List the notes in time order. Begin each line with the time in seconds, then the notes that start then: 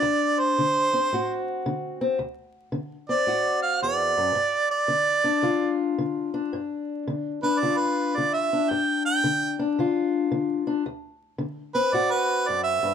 Already playing: D4 D5
0.02 D2
0.40 C5
0.58 D3
0.93 C4
1.13 A2 F#4
1.66 D3
2.01 C4
2.19 D2
2.72 D3
3.09 C4 D5
3.27 A2 F#4
3.63 F5
3.82 E2 D5
4.17 F#2
4.35 G2
4.71 D5
4.88 D3
5.24 D4
5.43 D3 F4
5.98 D3
6.34 D4
6.53 G2
7.07 D3
7.43 D4 B4
7.60 D3 F4 D5
7.77 B4
8.16 D3 D5
8.34 E5
8.53 D4
8.70 G2 G5
9.06 G5
9.24 D3
9.59 D4
9.79 D3 F4
10.31 D3
10.67 D4
10.86 D2
11.38 D3
11.75 C4 B4
11.93 A2 F#4 D5
12.11 B4
12.48 F#2 D5
12.64 E5
12.83 G2